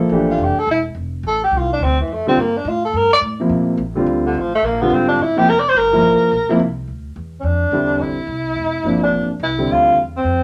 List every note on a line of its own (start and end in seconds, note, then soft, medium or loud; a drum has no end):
0.00 0.25 F3 medium
0.00 0.26 A#3 medium
0.00 0.26 E4 medium
0.00 0.26 A4 medium
0.09 0.38 A1 medium
0.09 0.54 E3 medium
0.09 0.54 A3 medium
0.09 0.54 D4 medium
0.09 0.54 G4 medium
0.31 0.45 F4 medium
0.38 0.55 F1 medium
0.44 0.61 G4 medium
0.57 0.69 A4 loud
0.57 muted upright bass stroke soft
0.67 0.94 E1 medium
0.71 0.81 E4 medium
0.95 1.23 F1 medium
1.23 1.51 A1 medium
1.27 1.42 A4 medium
1.44 1.59 G4 medium
1.51 1.79 C2 medium
1.58 1.72 F4 medium
1.73 1.85 D4 medium
1.80 2.07 D2 medium
1.84 2.00 C4 medium
2.01 2.15 E3 medium
2.08 2.25 F2 medium
2.13 2.28 A3 medium
2.26 2.36 D3 medium
2.26 2.37 G3 medium
2.26 2.37 C4 medium
2.26 2.42 C4 loud
2.26 2.37 F4 medium
2.26 muted upright bass stroke soft
2.36 2.64 G2 medium
2.40 2.59 A#3 medium
2.57 2.70 D4 medium
2.65 2.93 A2 medium
2.65 2.85 F4 medium
2.85 2.98 A4 medium
2.93 3.21 G2 medium
2.93 3.13 A#4 medium
3.13 3.19 D5 loud
3.21 3.49 A2 medium
3.40 3.76 C3 medium
3.40 3.77 F3 medium
3.40 3.77 A#3 medium
3.40 3.77 E4 medium
3.49 3.77 A#2 medium
3.77 4.05 A#1 medium
3.95 4.32 D3 medium
3.95 4.33 G3 medium
3.95 4.33 C4 medium
3.95 4.33 F4 medium
4.07 4.34 D2 medium
4.26 4.41 D3 medium
4.35 4.62 A1 medium
4.39 4.54 F3 medium
4.55 4.67 A3 loud
4.62 4.90 A#1 medium
4.62 4.83 A#3 medium
4.82 5.18 D3 medium
4.82 5.18 G3 medium
4.82 4.95 B3 medium
4.82 5.18 C4 medium
4.82 5.18 F4 medium
4.90 5.18 G#1 medium
4.90 5.08 C4 medium
5.09 5.24 D4 medium
5.19 5.46 A1 medium
5.19 5.39 E4 loud
5.36 5.46 C3 medium
5.36 5.46 F3 medium
5.36 5.46 A#3 medium
5.36 5.47 E4 medium
5.36 5.51 G4 loud
5.47 5.74 F1 medium
5.47 5.61 A#4 loud
5.60 5.71 D5 loud
5.69 5.79 C5 loud
5.74 6.02 G1 medium
5.74 6.61 A#4 medium
5.93 6.29 F3 medium
5.93 6.30 A#3 medium
5.93 6.29 E4 medium
5.93 6.30 A#4 medium
6.03 6.19 A1 medium
6.32 6.48 A#1 medium
6.49 6.58 C3 medium
6.49 6.59 F3 medium
6.49 6.59 A#3 medium
6.49 6.59 E4 medium
6.49 muted upright bass stroke soft
6.59 6.87 C2 medium
6.88 7.15 D2 medium
7.16 7.43 E2 medium
7.40 7.71 F2 medium
7.40 7.47 C#4 medium
7.45 8.03 D4 medium
7.72 7.99 E2 medium
7.72 8.14 D3 medium
7.72 8.14 G3 soft
7.72 8.14 C4 soft
7.72 8.15 E4 medium
7.99 8.26 A1 medium
7.99 9.03 E4 medium
8.27 8.55 C2 medium
8.56 8.83 F1 medium
8.83 9.11 G1 medium
8.83 9.26 C3 medium
8.83 9.27 F3 soft
8.83 9.27 A#3 soft
8.83 9.27 D4 medium
9.04 9.29 D4 medium
9.12 9.39 A1 medium
9.40 9.67 C2 medium
9.40 9.73 E4 medium
9.58 9.95 D3 medium
9.58 9.95 G3 medium
9.58 9.95 C4 medium
9.58 9.96 E4 medium
9.67 9.95 D2 medium
9.72 9.99 F4 medium
9.96 10.23 E2 medium
10.17 10.43 C4 medium
10.24 10.43 F2 medium